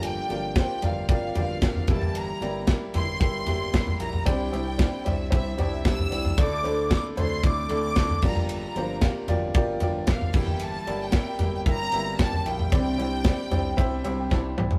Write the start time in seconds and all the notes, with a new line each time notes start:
Already playing: G1 G2 D3 F3 A#3 D4 F4 G4 A#4 D5
0.03 G5, ride
0.29 G1 F3 A#3 D4 F4 G4 A#4 D5, ride
0.56 F3 A#3 D4 F4 G4 A#4 C5 G5, kick, snare, ride
0.81 G1 F3 A#3 D4 F4 G4 A#4 D5 F5, floor tom, ride
1.09 G1 F4 G4 A#4 D5 F5, kick, ride
1.34 G1 F3 A#3 D4 F4 G4 A#4 D5, floor tom, ride
1.39 F5
1.61 G1 F3 A#3 D4 F4 G4 A#4 E5 F5, kick, snare, ride
1.75 floor tom
1.88 G1 G2 E3 G3 A#3 E4 G4 A#4 E5, kick, ride
1.92 A5
2.02 floor tom
2.15 A#5, ride
2.41 G1 G3 A#3 E4 G4 A#4 D5, ride
2.67 G3 A#3 E4 G4 A#4 E5, kick, snare, ride
2.94 G1 G3 A#3 E4 G4 A#4 E5 C6, floor tom, ride
3.20 G1 E4 G4 A#4 E5, kick, ride
3.46 G1 G3 A#3 E4 G4 A#4 E5, floor tom, ride
3.73 G1 G3 A#3 E4 G4 A#4 E5, kick, snare, ride
3.87 floor tom
4.00 A#1 E4 G4 A#4 E5 A#5, ride
4.13 floor tom
4.25 C2 C3 G3 D4 E4 G4 C5 D5 G5, kick, ride
4.52 C2 D4 E4 G4 C5 E5, ride
4.78 G3 D4 E4 G4 C5 D5, kick, snare, ride
5.05 C2 D4 E4 G4 C5 D5 E5, floor tom, ride
5.30 C2 E4 G4 C5 E5, kick, ride
5.57 C2 D4 E4 G4 C5 D5 E5, floor tom, ride
5.84 C2 G3 D4 E4 G4 C5 E5 E6, kick, snare, ride
5.99 floor tom
6.10 C2 E4 G4 C5 D5, ride
6.25 floor tom
6.37 D2 D3 A3 D4 E4 A4 D5 D6, kick, ride
6.63 D2 D4 E4 A4 C5, ride
6.90 A3 D4 E4 A4 D5 D6, kick, snare, ride
7.16 D2 D4 E4 A4 C5, floor tom, ride
7.20 C6
7.43 D2 D4 E4 A4 D5 D6, kick, ride
7.69 D2 D4 E4 A4 D5, ride
7.73 D6
7.96 D2 A3 D4 E4 A4 D5, kick, snare, ride
8.09 floor tom
8.22 G1 G2 D3 F3 A#3 D4 F4 G4 A#4 D5 A#5, kick, crash
8.35 floor tom
8.49 A#5, ride
8.75 G1 F3 A#3 D4 F4 G4 A#4 C5, ride
9.01 F3 A#3 D4 F4 G4 A#4 F5, kick, snare, ride
9.28 G1 F3 A#3 D4 F4 G4 A#4 D5, floor tom, ride
9.54 G1 F4 G4 A#4 D5, kick, ride
9.80 G1 F3 A#3 D4 F4 G4 A#4 D5, floor tom, ride
10.07 G1 F3 A#3 D4 F4 G4 A#4 E5 F5, kick, snare, ride
10.21 floor tom
10.33 G1 G2 E3 G3 A#3 E4 G4 A#4 E5 G5, kick, crash
10.47 floor tom
10.60 A5, ride
10.86 G1 G3 A#3 E4 G4 A#4 D5, ride
11.03 G5
11.12 G3 A#3 E4 G4 A#4 E5, kick, snare, ride
11.39 G1 G3 A#3 E4 G4 A#4 E5, floor tom, ride
11.55 G5
11.66 G1 E4 G4 A#4 E5 A#5, kick, ride
11.92 G1 G3 A#3 E4 G4 A#4 E5, ride
12.19 G1 G3 A#3 E4 G4 A#4 G5 A5, kick, snare, ride
12.33 floor tom
12.45 A#1 E4 G4 A#4 E5 G5, ride
12.59 floor tom
12.72 C2 C3 E3 G3 C4 D4 E4 G4 C5 D5, kick, ride
12.98 C2 G3 C4 D4 E4 G4 C5 D5, ride
13.24 G3 C4 D4 E4 G4 C5 D5, kick, snare, ride
13.51 C2 G3 C4 D4 E4 G4 C5 D5, floor tom, ride
13.77 C2 E4 G4 C5 E5, kick, ride
14.04 C2 G3 C4 D4 E4 G4 C5 E5, ride
14.18 G5
14.30 C2 G3 C4 D4 E4 G4 C5 E5 A5, kick, snare
14.57 C2 E4 G4 C5 E5, mid tom
14.71 floor tom